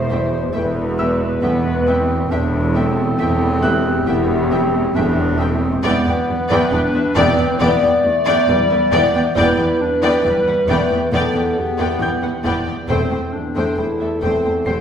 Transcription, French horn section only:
0, 0, Header, 1, 2, 480
1, 0, Start_track
1, 0, Key_signature, 1, "minor"
1, 0, Tempo, 882353
1, 1257, Time_signature, 4, 2, 24, 8
1, 8055, End_track
2, 0, Start_track
2, 0, Title_t, "French horn section"
2, 0, Program_c, 0, 60
2, 0, Note_on_c, 0, 72, 107
2, 272, Note_off_c, 0, 72, 0
2, 291, Note_on_c, 0, 71, 109
2, 1245, Note_on_c, 0, 69, 98
2, 1254, Note_off_c, 0, 71, 0
2, 1956, Note_off_c, 0, 69, 0
2, 1979, Note_on_c, 0, 67, 101
2, 2938, Note_off_c, 0, 67, 0
2, 3170, Note_on_c, 0, 71, 117
2, 4111, Note_off_c, 0, 71, 0
2, 4129, Note_on_c, 0, 74, 122
2, 5089, Note_on_c, 0, 71, 113
2, 5093, Note_off_c, 0, 74, 0
2, 6050, Note_on_c, 0, 69, 103
2, 6053, Note_off_c, 0, 71, 0
2, 6288, Note_off_c, 0, 69, 0
2, 6292, Note_on_c, 0, 67, 84
2, 6774, Note_off_c, 0, 67, 0
2, 7251, Note_on_c, 0, 69, 89
2, 7952, Note_off_c, 0, 69, 0
2, 7977, Note_on_c, 0, 67, 78
2, 8055, Note_off_c, 0, 67, 0
2, 8055, End_track
0, 0, End_of_file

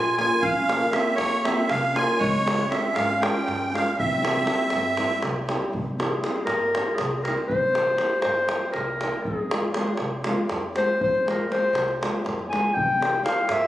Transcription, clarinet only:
0, 0, Header, 1, 2, 480
1, 0, Start_track
1, 0, Tempo, 502513
1, 424, Time_signature, 7, 3, 24, 8
1, 13059, End_track
2, 0, Start_track
2, 0, Title_t, "Clarinet"
2, 0, Program_c, 0, 71
2, 0, Note_on_c, 0, 65, 86
2, 165, Note_off_c, 0, 65, 0
2, 173, Note_on_c, 0, 65, 86
2, 398, Note_off_c, 0, 65, 0
2, 408, Note_on_c, 0, 61, 109
2, 859, Note_off_c, 0, 61, 0
2, 895, Note_on_c, 0, 60, 85
2, 1110, Note_off_c, 0, 60, 0
2, 1114, Note_on_c, 0, 58, 89
2, 1362, Note_off_c, 0, 58, 0
2, 1379, Note_on_c, 0, 60, 89
2, 1600, Note_off_c, 0, 60, 0
2, 1613, Note_on_c, 0, 61, 86
2, 1858, Note_off_c, 0, 61, 0
2, 1865, Note_on_c, 0, 65, 85
2, 2089, Note_off_c, 0, 65, 0
2, 2097, Note_on_c, 0, 56, 105
2, 2547, Note_off_c, 0, 56, 0
2, 2560, Note_on_c, 0, 60, 75
2, 2786, Note_off_c, 0, 60, 0
2, 2792, Note_on_c, 0, 61, 89
2, 3044, Note_off_c, 0, 61, 0
2, 3063, Note_on_c, 0, 61, 100
2, 3525, Note_off_c, 0, 61, 0
2, 3544, Note_on_c, 0, 61, 78
2, 3771, Note_off_c, 0, 61, 0
2, 3798, Note_on_c, 0, 60, 95
2, 4953, Note_off_c, 0, 60, 0
2, 5729, Note_on_c, 0, 68, 67
2, 6153, Note_off_c, 0, 68, 0
2, 6163, Note_on_c, 0, 70, 95
2, 6641, Note_on_c, 0, 68, 82
2, 6655, Note_off_c, 0, 70, 0
2, 6904, Note_off_c, 0, 68, 0
2, 6910, Note_on_c, 0, 70, 68
2, 7019, Note_off_c, 0, 70, 0
2, 7144, Note_on_c, 0, 72, 101
2, 7816, Note_off_c, 0, 72, 0
2, 7849, Note_on_c, 0, 72, 102
2, 8310, Note_off_c, 0, 72, 0
2, 8325, Note_on_c, 0, 70, 79
2, 8814, Note_on_c, 0, 68, 71
2, 8829, Note_off_c, 0, 70, 0
2, 9527, Note_off_c, 0, 68, 0
2, 10285, Note_on_c, 0, 72, 104
2, 10499, Note_off_c, 0, 72, 0
2, 10535, Note_on_c, 0, 72, 107
2, 10754, Note_off_c, 0, 72, 0
2, 10784, Note_on_c, 0, 70, 77
2, 10983, Note_off_c, 0, 70, 0
2, 10998, Note_on_c, 0, 72, 94
2, 11442, Note_off_c, 0, 72, 0
2, 11938, Note_on_c, 0, 80, 90
2, 12165, Note_on_c, 0, 79, 105
2, 12180, Note_off_c, 0, 80, 0
2, 12646, Note_off_c, 0, 79, 0
2, 12650, Note_on_c, 0, 77, 88
2, 12898, Note_on_c, 0, 76, 97
2, 12913, Note_off_c, 0, 77, 0
2, 13059, Note_off_c, 0, 76, 0
2, 13059, End_track
0, 0, End_of_file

